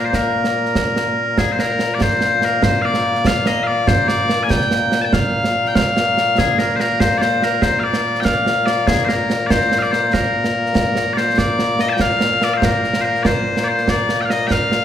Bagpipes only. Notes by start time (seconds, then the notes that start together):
Already playing: A#2 A#3
0.04 C5
0.15 A#4
1.38 G#4
1.52 C5
1.60 A#4
1.94 D5
2.02 C5
2.44 A#4
2.63 C5
2.82 D5 F5
3.27 F5
3.47 D#5
3.63 D5 F5
3.88 C5
4.08 D5
4.43 G#5
4.50 G5
5.02 G5 A5
5.13 F5
5.68 G5
5.75 F5
6.39 G#4
6.59 A#4
6.76 C5
6.80 A#4
7.00 C5
7.18 C5 D5
7.43 A#4
7.62 C5
7.80 D5 F5
8.20 G5
8.25 F5
8.66 D5
8.87 G#4
9.05 A#4 C5
9.46 D5
9.51 C5
9.79 D5 F5
9.92 C5
10.13 A#4
11.13 D5
11.17 C5
11.38 D5
11.81 D#5
11.89 G5 A5
12.01 F5
12.44 D5
12.54 C5 F5
12.65 A#4
13.01 A#4 C5
13.23 C5 D5
13.64 D5
13.68 C5
13.89 D5
14.21 F5 G5
14.30 D#5
14.47 G5
14.51 F5